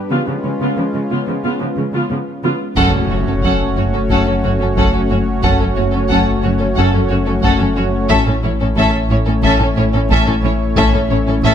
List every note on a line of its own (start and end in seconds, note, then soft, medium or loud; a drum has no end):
0.00 2.73 B4 medium
0.11 0.17 C#3 soft
0.11 2.77 G#3 medium
0.11 0.26 B3 soft
0.11 2.75 C#4 medium
0.11 2.77 F4 medium
0.11 0.26 F4 soft
0.27 0.34 C#3 soft
0.27 0.34 F3 soft
0.27 0.34 B3 soft
0.44 0.51 C#3 soft
0.44 0.51 G#3 soft
0.44 0.50 C#4 soft
0.61 0.67 C#3 soft
0.61 0.76 B3 soft
0.61 0.76 F4 soft
0.78 0.84 C#3 soft
0.78 0.84 F3 soft
0.78 0.84 B3 soft
0.94 1.01 C#3 soft
0.94 1.00 G#3 soft
0.94 1.01 C#4 soft
1.11 1.18 C#3 soft
1.11 1.26 B3 soft
1.11 1.26 F4 soft
1.28 1.34 C#3 soft
1.28 1.34 F3 soft
1.28 1.34 B3 soft
1.44 1.51 C#3 soft
1.44 1.59 B3 soft
1.44 1.59 F4 soft
1.60 1.67 C#3 soft
1.60 1.67 F3 soft
1.60 1.68 B3 soft
1.77 1.83 C#3 soft
1.77 1.85 G#3 soft
1.77 1.84 C#4 soft
1.93 2.00 C#3 soft
1.93 2.09 B3 soft
1.93 2.09 F4 soft
2.11 2.17 C#3 soft
2.11 2.17 F3 soft
2.11 2.17 B3 soft
2.44 2.51 C#3 soft
2.44 2.59 B3 soft
2.44 2.60 F4 soft
2.76 2.92 F#1 medium
2.76 8.12 F#1 medium
2.76 2.92 F#2 medium
2.76 8.06 A3 medium
2.76 3.08 A3 medium
2.76 8.06 C#4 medium
2.76 3.08 C#4 medium
2.76 2.92 C#4 medium
2.76 8.06 F#4 medium
2.76 2.92 A4 medium
2.76 8.06 C#5 medium
2.76 2.92 F#5 medium
2.76 taiko medium
2.76 impact medium
2.93 3.00 F#2 soft
2.93 3.00 C#4 soft
2.93 3.01 C#4 soft
2.93 3.00 A4 soft
3.10 3.17 F#1 soft
3.10 3.17 F#2 soft
3.10 3.17 C#4 soft
3.10 3.17 F#4 soft
3.10 3.17 C#5 soft
3.27 3.34 F#2 soft
3.27 3.34 C#4 soft
3.27 3.34 A4 soft
3.43 3.50 F#1 soft
3.43 3.51 F#2 soft
3.43 3.60 C#4 soft
3.43 3.59 A4 soft
3.43 3.59 F#5 medium
3.43 taiko medium
3.76 3.83 F#1 soft
3.76 3.84 F#2 soft
3.76 3.84 C#4 soft
3.76 3.84 F#4 soft
3.76 3.83 C#5 soft
3.93 4.00 F#2 soft
3.93 4.00 C#4 soft
3.93 4.00 A4 soft
4.10 4.17 F#1 medium
4.10 4.17 F#2 medium
4.10 4.34 A3 soft
4.10 4.33 C#4 soft
4.10 4.26 C#4 medium
4.10 4.25 A4 soft
4.10 4.26 F#5 soft
4.10 taiko medium
4.27 4.34 F#2 soft
4.27 4.33 C#4 soft
4.27 4.34 C#4 soft
4.27 4.34 A4 soft
4.44 4.50 F#1 soft
4.44 4.50 F#2 soft
4.44 4.50 C#4 soft
4.44 4.51 F#4 soft
4.44 4.51 C#5 soft
4.60 4.67 F#2 soft
4.60 4.66 C#4 soft
4.60 4.67 C#4 soft
4.60 4.68 A4 soft
4.76 4.83 F#1 medium
4.76 4.84 F#2 soft
4.76 4.92 C#4 medium
4.76 4.92 A4 soft
4.76 4.92 F#5 medium
4.76 taiko medium
4.94 5.01 F#2 soft
4.94 5.00 C#4 soft
4.94 5.00 A4 soft
5.10 5.17 F#1 soft
5.10 5.17 F#2 soft
5.10 5.17 C#4 soft
5.10 5.17 F#4 soft
5.10 5.16 C#5 soft
5.43 5.50 F#1 medium
5.43 5.51 F#2 medium
5.43 5.67 A3 soft
5.43 5.67 C#4 soft
5.43 5.60 C#4 medium
5.43 5.59 A4 soft
5.43 5.59 F#5 medium
5.43 taiko medium
5.59 5.67 F#2 soft
5.59 5.66 C#4 soft
5.59 5.68 C#4 soft
5.59 5.66 A4 soft
5.76 5.84 F#1 soft
5.76 5.84 F#2 soft
5.76 5.85 C#4 soft
5.76 5.83 F#4 soft
5.76 5.83 C#5 soft
5.92 6.00 F#2 soft
5.92 6.00 C#4 soft
5.92 6.02 C#4 soft
5.92 5.99 A4 soft
6.09 6.16 F#1 medium
6.09 6.17 F#2 medium
6.09 6.26 C#4 medium
6.09 6.25 A4 medium
6.09 6.25 F#5 medium
6.09 taiko medium
6.43 6.50 F#1 soft
6.43 6.51 F#2 soft
6.43 6.52 C#4 soft
6.43 6.50 F#4 soft
6.43 6.50 C#5 soft
6.59 6.67 F#2 soft
6.59 6.66 C#4 soft
6.59 6.68 C#4 soft
6.59 6.66 A4 soft
6.75 6.84 F#1 medium
6.75 6.84 F#2 medium
6.75 7.00 A3 soft
6.75 7.00 C#4 medium
6.75 6.93 C#4 medium
6.75 6.93 A4 medium
6.75 6.92 F#5 medium
6.75 taiko medium
6.92 7.01 F#2 soft
6.92 7.01 C#4 soft
6.92 6.99 A4 soft
7.08 7.17 F#1 soft
7.08 7.17 F#2 soft
7.08 7.18 C#4 soft
7.08 7.16 F#4 soft
7.08 7.15 C#5 soft
7.26 7.34 F#2 soft
7.26 7.33 C#4 soft
7.26 7.34 C#4 soft
7.26 7.32 A4 soft
7.42 7.50 F#1 medium
7.42 7.50 F#2 medium
7.42 7.59 C#4 medium
7.42 7.59 A4 medium
7.42 7.58 F#5 medium
7.42 taiko medium
7.59 7.66 F#2 soft
7.59 7.66 C#4 soft
7.59 7.67 C#4 soft
7.59 7.67 A4 soft
7.76 7.83 F#1 soft
7.76 7.83 F#2 soft
7.76 7.83 C#4 soft
7.76 7.83 F#4 medium
7.76 7.83 C#5 medium
8.09 8.17 A1 medium
8.09 11.54 A1 medium
8.09 8.16 A2 medium
8.09 11.54 A3 medium
8.09 8.34 A3 soft
8.09 11.54 C#4 medium
8.09 8.33 C#4 medium
8.09 8.26 C#4 medium
8.09 11.54 E4 medium
8.09 8.26 A4 medium
8.09 11.54 C#5 medium
8.09 8.25 E5 medium
8.09 taiko medium
8.26 8.33 A2 soft
8.26 8.34 C#4 soft
8.26 8.33 A4 soft
8.43 8.50 A1 soft
8.43 8.50 A2 soft
8.43 8.51 C#4 soft
8.43 8.49 E4 soft
8.43 8.51 C#5 soft
8.59 8.67 A2 soft
8.59 8.66 C#4 soft
8.59 8.67 C#4 soft
8.59 8.67 A4 soft
8.76 8.83 A1 medium
8.76 8.83 A2 medium
8.76 8.93 C#4 medium
8.76 8.92 A4 medium
8.76 8.92 E5 medium
8.76 taiko medium
9.10 9.17 A1 soft
9.10 9.17 A2 soft
9.10 9.18 C#4 soft
9.10 9.17 E4 soft
9.10 9.18 C#5 medium
9.26 9.33 A2 soft
9.26 9.33 C#4 medium
9.26 9.35 C#4 soft
9.26 9.33 A4 soft
9.43 9.50 A1 medium
9.43 9.50 A2 medium
9.43 9.66 A3 medium
9.43 9.66 C#4 medium
9.43 9.60 C#4 medium
9.43 9.59 A4 medium
9.43 9.59 E5 medium
9.43 taiko medium
9.59 9.66 A2 soft
9.59 9.67 C#4 medium
9.59 9.67 C#4 soft
9.59 9.67 A4 soft
9.75 9.83 A1 soft
9.75 9.82 A2 medium
9.75 9.85 C#4 medium
9.75 9.84 E4 soft
9.75 9.84 C#5 medium
9.93 10.00 A2 medium
9.93 10.00 C#4 soft
9.93 10.02 C#4 medium
9.93 10.00 A4 medium
10.09 10.16 A1 medium
10.09 10.16 A2 medium
10.09 10.26 C#4 medium
10.09 10.26 A4 medium
10.09 10.26 E5 medium
10.09 taiko medium
10.26 10.33 A2 medium
10.26 10.33 C#4 medium
10.26 10.34 C#4 medium
10.26 10.34 A4 medium
10.43 10.50 A1 medium
10.43 10.50 A2 medium
10.43 10.51 C#4 medium
10.43 10.51 E4 medium
10.43 10.51 C#5 medium
10.76 10.83 A1 medium
10.76 10.83 A2 medium
10.76 11.00 A3 medium
10.76 11.00 C#4 medium
10.76 10.93 C#4 medium
10.76 10.92 A4 medium
10.76 10.92 E5 medium
10.76 taiko medium
10.94 11.00 A2 medium
10.94 11.00 C#4 soft
10.94 11.01 C#4 soft
10.94 11.00 A4 soft
11.09 11.16 A1 medium
11.09 11.17 A2 medium
11.09 11.18 C#4 soft
11.09 11.17 E4 soft
11.09 11.17 C#5 medium
11.27 11.34 A2 medium
11.27 11.34 C#4 medium
11.27 11.34 A4 medium
11.43 11.49 A1 medium
11.43 11.51 A2 medium
11.43 11.54 C#4 medium
11.43 11.54 A4 medium
11.43 11.54 E5 medium
11.43 taiko medium